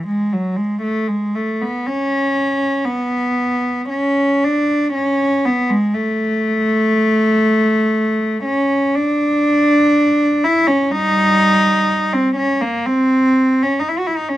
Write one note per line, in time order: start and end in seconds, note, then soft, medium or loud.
0.08 0.33 G#3 medium
0.33 0.59 F#3 medium
0.57 0.84 G#3 medium
0.83 1.09 A3 medium
1.08 1.36 G#3 medium
1.35 1.62 A3 medium
1.62 1.88 B3 medium
1.86 2.86 C#4 medium
2.85 3.89 B3 medium
3.90 4.41 C#4 medium
4.44 4.95 D4 medium
4.94 5.44 C#4 medium
5.45 5.70 B3 medium
5.70 5.94 G#3 medium
5.94 8.43 A3 medium
8.44 8.92 C#4 medium
8.95 10.43 D4 medium
10.44 10.68 E4 medium
10.67 10.91 C#4 medium
10.91 12.08 G3 medium
10.91 12.13 D#4 medium
12.13 12.37 C4 medium
12.36 12.61 C#4 medium
12.62 12.86 A#3 medium
12.86 13.62 C4 medium
13.63 13.78 C#4 medium
13.80 13.90 D#4 medium
13.89 13.98 E4 medium
13.99 14.07 F#4 medium
14.07 14.16 E4 medium
14.17 14.28 D#4 medium
14.29 14.37 C#4 medium